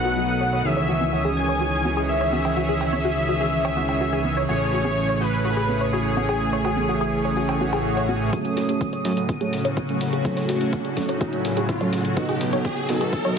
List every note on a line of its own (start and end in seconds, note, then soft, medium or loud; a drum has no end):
0.00 0.62 B1 medium
0.00 0.62 B2 medium
0.00 0.61 D#3 medium
0.00 0.61 F#3 medium
0.00 0.62 F#3 medium
0.00 0.61 A3 medium
0.00 0.61 B3 medium
0.00 0.62 B3 medium
0.00 0.62 D#4 medium
0.00 0.61 F#4 medium
0.00 0.62 A4 medium
0.00 0.62 B4 medium
0.00 0.66 F#5 loud
0.00 8.34 D#6 medium
0.05 0.10 F#4 medium
0.17 0.22 F#3 medium
0.41 0.46 C#5 medium
0.53 0.58 C#5 medium
0.65 4.46 C#2 medium
0.65 8.29 C#3 medium
0.65 4.46 D#3 medium
0.65 4.46 E3 medium
0.65 4.46 C#4 medium
0.65 4.45 C#4 medium
0.65 4.46 G#4 medium
0.65 8.29 G#4 medium
0.65 4.46 C#5 medium
0.65 1.27 E5 loud
0.77 0.82 C#5 loud
0.89 0.94 F#4 medium
1.01 high conga medium
1.13 1.18 F#4 medium
1.25 1.30 G#4 loud
1.37 1.99 G#5 loud
1.49 1.54 C#5 loud
1.61 1.66 F#4 medium
1.85 1.90 F#4 medium
1.85 high conga medium
1.97 2.02 G#4 loud
2.09 4.39 E5 loud
2.21 2.26 C#5 loud
2.33 2.38 F#4 medium
2.33 high conga medium
2.45 cowbell medium
2.57 2.62 F#4 medium
2.69 2.74 G#4 loud
2.81 cowbell medium
2.93 2.98 C#5 loud
2.93 high conga medium
3.05 3.10 F#4 medium
3.29 3.34 F#4 medium
3.41 3.46 G#4 loud
3.65 3.70 C#5 loud
3.65 cowbell medium
3.77 3.82 F#4 medium
3.77 high conga medium
3.89 cowbell medium
4.01 4.06 F#4 medium
4.13 4.18 G#4 loud
4.25 high conga medium
4.37 4.42 C#5 loud
4.49 8.30 A1 medium
4.49 8.30 A2 medium
4.49 8.30 E3 medium
4.49 8.29 A3 medium
4.49 8.30 A3 medium
4.49 8.30 C#4 medium
4.49 4.54 F#4 medium
4.49 8.30 G#4 medium
4.49 8.30 C#5 medium
4.49 5.22 C#5 loud
4.73 4.78 F#4 medium
4.85 4.90 G#4 medium
4.85 high conga medium
5.09 5.14 C#5 loud
5.21 5.26 F#4 medium
5.21 5.83 B4 loud
5.45 5.50 F#4 medium
5.57 5.62 G#4 loud
5.69 high conga medium
5.81 5.86 C#5 loud
5.93 5.98 F#4 medium
5.93 8.23 G#4 loud
6.17 6.22 F#4 medium
6.17 high conga medium
6.29 6.34 G#4 loud
6.29 cowbell medium
6.53 6.58 C#5 medium
6.65 6.70 F#4 medium
6.65 cowbell medium
6.77 high conga medium
6.89 6.94 F#4 medium
7.01 7.06 G#4 loud
7.25 7.30 C#5 loud
7.37 7.42 F#4 medium
7.37 swell medium
7.49 cowbell medium
7.61 7.66 F#4 medium
7.61 high conga medium
7.73 7.78 G#4 loud
7.73 cowbell medium
7.97 8.02 C#5 loud
8.09 8.14 F#4 medium
8.09 high conga medium
8.33 12.13 A2 medium
8.33 12.13 C#3 medium
8.33 13.38 F#3 medium
8.33 8.66 F#3 medium
8.33 8.66 A3 medium
8.33 12.13 C#4 medium
8.33 8.66 C#4 medium
8.33 8.38 F#4 medium
8.33 12.13 F#4 medium
8.33 8.66 A4 medium
8.33 kick loud
8.33 closed hi-hat medium
8.33 riser medium
8.45 closed hi-hat soft
8.57 8.73 F#1 loud
8.57 8.62 F#4 medium
8.57 open hi-hat loud
8.69 8.80 F#3 loud
8.69 8.80 A3 medium
8.69 8.80 C#4 medium
8.69 8.74 G#4 loud
8.69 8.80 A4 medium
8.69 8.80 C#5 loud
8.69 closed hi-hat medium
8.81 kick loud
8.81 closed hi-hat medium
8.93 8.98 C#5 loud
8.93 closed hi-hat soft
9.05 9.13 F#2 medium
9.05 9.16 F#3 medium
9.05 9.16 A3 medium
9.05 9.16 C#4 medium
9.05 9.10 F#4 medium
9.05 9.16 A4 medium
9.05 9.16 C#5 medium
9.05 open hi-hat loud
9.17 9.33 F#1 medium
9.17 closed hi-hat medium
9.29 9.34 F#4 medium
9.29 kick loud
9.29 closed hi-hat medium
9.41 9.48 F#3 medium
9.41 9.48 A3 medium
9.41 9.48 C#4 medium
9.41 9.46 G#4 loud
9.41 9.48 A4 medium
9.41 9.48 C#5 medium
9.41 closed hi-hat soft
9.53 9.61 F#1 loud
9.53 open hi-hat loud
9.65 9.81 E1 medium
9.65 9.70 C#5 loud
9.65 closed hi-hat medium
9.77 9.82 F#4 medium
9.77 kick loud
9.77 closed hi-hat medium
9.89 9.96 F#3 medium
9.89 9.96 A3 medium
9.89 9.96 C#4 medium
9.89 9.96 A4 medium
9.89 9.96 C#5 loud
9.89 closed hi-hat soft
10.01 10.17 F#1 medium
10.01 10.06 F#4 medium
10.01 open hi-hat loud
10.13 10.18 G#4 loud
10.13 closed hi-hat medium
10.25 10.58 F#3 medium
10.25 10.58 A3 medium
10.25 10.58 C#4 medium
10.25 10.58 A4 medium
10.25 10.58 C#5 loud
10.25 kick loud
10.25 closed hi-hat medium
10.37 10.42 C#5 loud
10.37 open hi-hat medium
10.49 10.65 F#1 loud
10.49 10.54 F#4 medium
10.49 open hi-hat loud
10.61 10.72 F#3 medium
10.61 10.72 A3 medium
10.61 10.72 C#4 medium
10.61 10.72 A4 medium
10.61 10.72 C#5 loud
10.61 closed hi-hat medium
10.73 10.78 F#4 medium
10.73 kick loud
10.73 closed hi-hat medium
10.85 10.90 G#4 loud
10.85 closed hi-hat soft
10.97 11.05 F#2 medium
10.97 11.08 F#3 medium
10.97 11.08 A3 medium
10.97 11.08 C#4 medium
10.97 11.08 A4 medium
10.97 11.08 C#5 medium
10.97 kick medium
10.97 open hi-hat loud
11.09 11.25 F#1 medium
11.09 11.14 C#5 loud
11.09 closed hi-hat medium
11.21 11.26 F#4 medium
11.21 kick loud
11.21 closed hi-hat medium
11.33 11.40 F#3 medium
11.33 11.40 A3 medium
11.33 11.40 C#4 medium
11.33 11.40 A4 medium
11.33 11.40 C#5 medium
11.33 closed hi-hat soft
11.45 11.53 F#1 loud
11.45 11.50 F#4 medium
11.45 open hi-hat loud
11.57 11.73 E1 medium
11.57 11.62 G#4 loud
11.57 closed hi-hat medium
11.69 kick loud
11.69 closed hi-hat medium
11.81 11.88 F#3 medium
11.81 11.88 A3 medium
11.81 11.88 C#4 medium
11.81 11.88 A4 medium
11.81 11.86 C#5 loud
11.81 11.88 C#5 loud
11.81 closed hi-hat soft
11.93 12.09 F#1 medium
11.93 11.98 F#4 medium
11.93 open hi-hat loud
12.05 closed hi-hat medium
12.17 12.50 B2 medium
12.17 13.38 D#3 medium
12.17 12.50 F#3 medium
12.17 13.38 A3 medium
12.17 12.50 B3 medium
12.17 13.38 B3 medium
12.17 12.50 D#4 medium
12.17 13.38 F#4 medium
12.17 12.22 F#4 medium
12.17 12.50 A4 medium
12.17 12.50 D#5 loud
12.17 kick loud
12.17 closed hi-hat medium
12.29 12.34 G#4 loud
12.29 closed hi-hat soft
12.41 12.57 B1 loud
12.41 open hi-hat loud
12.53 12.64 B2 medium
12.53 12.64 F#3 medium
12.53 12.64 B3 medium
12.53 12.64 D#4 medium
12.53 12.64 A4 medium
12.53 12.58 C#5 loud
12.53 12.64 D#5 loud
12.53 closed hi-hat medium
12.65 12.70 F#4 medium
12.65 kick loud
12.65 closed hi-hat medium
12.77 closed hi-hat soft
12.89 12.97 F#1 loud
12.89 13.00 B2 medium
12.89 13.00 F#3 medium
12.89 13.00 B3 medium
12.89 13.00 D#4 medium
12.89 12.94 F#4 medium
12.89 13.00 A4 medium
12.89 13.00 D#5 medium
12.89 open hi-hat loud
13.01 13.17 B1 medium
13.01 13.06 G#4 loud
13.01 closed hi-hat medium
13.13 kick loud
13.13 closed hi-hat medium
13.25 13.32 B2 medium
13.25 13.32 F#3 medium
13.25 13.32 B3 medium
13.25 13.32 D#4 medium
13.25 13.32 A4 medium
13.25 13.30 C#5 loud
13.25 13.32 D#5 medium
13.25 closed hi-hat soft